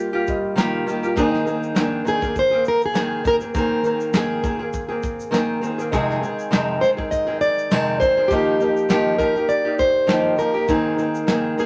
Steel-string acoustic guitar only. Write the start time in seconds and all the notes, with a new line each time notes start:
Already playing: F4
1.19 D#4
1.81 D4
2.08 G#4
2.39 C5
2.68 A#4
2.86 G#4
3.27 A#4
3.58 A#4
4.17 G#4
5.95 G#4
6.81 C5
7.11 D#5
7.41 D5
8.00 C5
8.28 G4
9.18 A#4
9.49 D5
9.79 C5
10.39 A#4
10.70 D#4
11.60 G#4